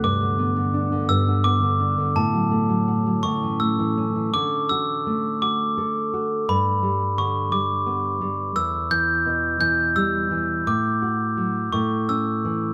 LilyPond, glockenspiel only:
\new Staff \with { instrumentName = "Glockenspiel" } { \time 6/8 \key d \major \tempo 4. = 56 d'''4 r8 e'''8 d'''4 | a''4. cis'''8 e'''4 | d'''8 e'''4 d'''4. | b''4 cis'''8 d'''4. |
e'''8 g'''4 g'''8 e'''4 | d'''4. cis'''8 e'''4 | }